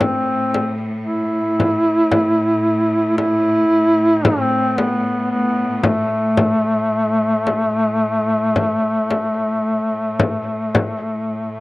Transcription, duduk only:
0.01 0.81 C4 medium
1.06 3.14 E4 medium
3.17 4.27 E4 loud
4.25 4.80 C4 loud
4.78 5.30 B3 medium
5.31 5.77 B3 medium
5.77 5.85 B3 medium
5.83 11.60 A3 medium

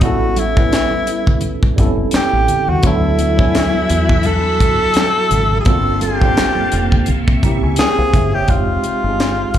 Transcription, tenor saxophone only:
0.03 0.40 F#4 medium
0.39 1.79 E4 loud
2.16 2.71 G4 loud
2.69 2.88 F#4 medium
2.86 4.28 E4 loud
4.26 5.60 A4 loud
5.60 5.68 G#4 medium
5.67 6.02 A4 loud
6.03 7.39 G4 loud
7.79 8.35 G#4 loud
8.34 8.52 G4 loud
8.50 9.59 F4 medium

